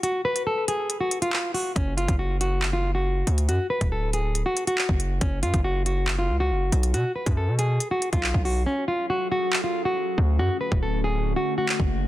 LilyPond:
<<
  \new Staff \with { instrumentName = "Nylon-string guitar" } { \time 4/4 \key fis \minor \tempo 4 = 139 fis'8 b'8 a'8 gis'8. fis'8 eis'8. fis'8 | cis'8 eis'8 fis'8 fis'8. eis'8 fis'4~ fis'16 | fis'8 b'8 a'8 gis'8. fis'8 fis'4~ fis'16 | cis'8 eis'8 fis'8 fis'8. eis'8 fis'4~ fis'16 |
fis'8 b'8 a'8 gis'8. fis'8 eis'8. fis'8 | cis'8 eis'8 fis'8 fis'8. eis'8 fis'4~ fis'16 | fis'8 b'8 a'8 gis'8. fis'8 fis'4~ fis'16 | }
  \new Staff \with { instrumentName = "Ambient pad" } { \time 4/4 \key fis \minor r1 | r1 | r1 | r1 |
r1 | <fis cis' gis' a'>1 | <d a fis'>1 | }
  \new Staff \with { instrumentName = "808-style bass" } { \clef bass \time 4/4 \key fis \minor r1 | fis,,8. fis,,2~ fis,,8. d,8 | fis,16 r8 d,,4. r4 fis,,8. | fis,,8 fis,16 fis,,4.~ fis,,16 cis,8 fis,,8 b,,8 |
b,16 r8 fis,8 b,8. r8. b,,8 b,,8. | r2. r8 d,8 | fis,16 r8 d,,4. r4 fis,,8. | }
  \new DrumStaff \with { instrumentName = "Drums" } \drummode { \time 4/4 hh8. hh16 r8 hh8 hh8 hh16 hh16 hc8 hho8 | <hh bd>8 hh16 <hh bd>16 r8 hh8 hc4 r8 hh16 hh16 | hh8. <hh bd>16 r8 hh8 hh8 hh16 hh16 hc16 bd16 hh8 | <hh bd>8 hh16 <hh bd>16 r8 hh8 hc4 r8 hh16 hh16 |
hh8. <hh bd>16 r8 hh8 hh8 hh16 <hh bd>16 hc16 bd16 hho8 | r4 r4 hc4 r4 | r8. bd16 r4 r4 hc16 bd8. | }
>>